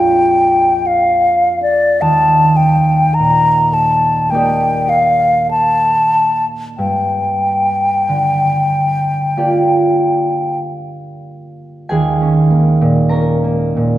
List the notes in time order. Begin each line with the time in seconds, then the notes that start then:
Already playing: A#1 F2 C4 D4 F4 D5 G5
0.87 F5
1.62 D5
2.01 D#2 A5
2.57 G5
3.14 A#5
3.19 A#2
3.74 A5
4.30 A#3 D#4 G5
4.34 G4 D5
4.89 F5
5.51 A5
6.78 G2 G5
8.09 D3
9.37 A#3 F4 G4 D5
11.89 D#2 G#4 G#5
12.22 C#4
12.51 A#3
12.81 A#2
13.09 C#4 A#4 A#5
13.44 A#3
13.77 A#2